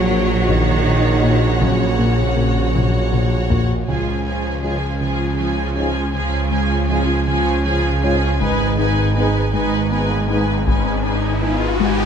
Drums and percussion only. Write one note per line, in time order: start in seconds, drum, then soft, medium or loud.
0.49 taiko medium
1.62 taiko medium
2.75 taiko mid medium
3.13 taiko mid medium
3.51 taiko low medium
3.88 taiko soft
8.41 taiko medium
10.68 taiko medium
11.81 taiko high medium